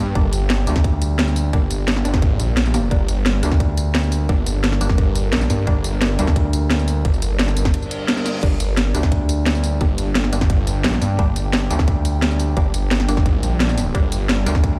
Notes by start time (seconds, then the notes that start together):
Already playing: G3 D4 G4
0.00 G2
0.15 G1 G3 A#3 D4, kick, closed hi-hat
0.33 closed hi-hat, tambourine
0.50 snare, closed hi-hat
0.67 D2 G3 A#3 D4, closed hi-hat, tambourine
0.76 kick, snare
0.84 kick, closed hi-hat
1.02 closed hi-hat, tambourine
1.19 snare, closed hi-hat
1.27 tambourine
1.36 open hi-hat, tambourine
1.53 G1 G3 A#3 D4, kick, closed hi-hat
1.71 closed hi-hat, tambourine
1.88 snare, closed hi-hat
1.96 snare
2.05 G1 G3 A#3 D4, closed hi-hat, tambourine
2.14 kick, snare
2.22 G#1, kick, closed hi-hat
2.40 A#1, closed hi-hat, tambourine
2.57 snare, closed hi-hat
2.65 snare, tambourine
2.74 G3 A#3 D4, snare, open hi-hat, tambourine
2.91 G1 G3 A#3 D4 A#4, kick, closed hi-hat
3.08 closed hi-hat, tambourine
3.26 snare, closed hi-hat
3.43 D2 G3 A#3 D4, closed hi-hat, tambourine
3.52 kick, snare
3.60 kick, closed hi-hat
3.77 closed hi-hat, tambourine
3.95 snare, closed hi-hat
4.03 tambourine
4.12 open hi-hat, tambourine
4.29 G1 G3 A#3 D4, kick, closed hi-hat
4.46 closed hi-hat, tambourine
4.64 snare, closed hi-hat
4.72 snare
4.81 G1 G3 A#3 D4, closed hi-hat, tambourine
4.89 kick, snare
4.98 G1, kick, closed hi-hat
5.15 closed hi-hat, tambourine
5.33 A#1, snare, closed hi-hat
5.41 snare, tambourine
5.50 G2, snare, open hi-hat, tambourine
5.67 G1 G3 A#3 D4, kick, closed hi-hat
5.84 closed hi-hat, tambourine
6.02 snare, closed hi-hat
6.19 D2 G3 A#3 D4, closed hi-hat, tambourine
6.27 kick, snare
6.36 kick, closed hi-hat
6.53 closed hi-hat, tambourine
6.70 snare, closed hi-hat
6.79 tambourine
6.88 open hi-hat, tambourine
7.05 G1, kick, closed hi-hat
7.14 tambourine
7.22 closed hi-hat, tambourine
7.39 snare, closed hi-hat
7.48 snare, tambourine
7.57 G1, closed hi-hat, tambourine
7.65 kick, snare
7.74 closed hi-hat, reverse cymbal
7.82 tambourine
7.91 closed hi-hat, tambourine
8.08 snare, closed hi-hat
8.17 snare, tambourine
8.26 snare, open hi-hat, tambourine
8.43 G1 G3 A#3 D4 G4, kick, closed hi-hat, crash
8.60 closed hi-hat, tambourine
8.77 snare, closed hi-hat
8.94 D2 G3 A#3 D4, closed hi-hat, tambourine
9.03 kick, snare
9.12 kick, closed hi-hat
9.29 closed hi-hat, tambourine
9.46 snare, closed hi-hat
9.55 tambourine
9.64 open hi-hat, tambourine
9.81 G1 G3 A#3 D4, kick, closed hi-hat
9.98 closed hi-hat, tambourine
10.15 snare, closed hi-hat
10.24 snare
10.33 G1 G3 A#3 D4, closed hi-hat, tambourine
10.41 kick, snare
10.50 G1, kick, closed hi-hat
10.67 closed hi-hat, tambourine
10.84 A#1, snare, closed hi-hat
10.93 snare, tambourine
11.02 G2, snare, open hi-hat, tambourine
11.19 G1 G3 A#3 D4, kick, closed hi-hat
11.36 closed hi-hat, tambourine
11.53 snare, closed hi-hat
11.70 D2 G3 A#3 D4, closed hi-hat, tambourine
11.79 kick, snare
11.88 kick, closed hi-hat
12.05 closed hi-hat, tambourine
12.22 snare, closed hi-hat
12.31 tambourine
12.39 open hi-hat, tambourine
12.57 G1 G3 A#3 D4, kick, closed hi-hat
12.74 closed hi-hat, tambourine
12.91 snare, closed hi-hat
13.00 snare
13.08 G1 G3 A#3 D4, closed hi-hat, tambourine
13.17 kick, snare
13.26 G#1, kick, closed hi-hat
13.43 A#1, closed hi-hat, tambourine
13.60 snare, closed hi-hat
13.69 snare, tambourine
13.78 snare, open hi-hat, tambourine
13.95 G1 G3 A#3 D4 C5, kick, closed hi-hat
14.12 closed hi-hat, tambourine
14.29 snare, closed hi-hat
14.46 D2 G3 A#3 D4, closed hi-hat, tambourine
14.55 kick, snare
14.64 kick, closed hi-hat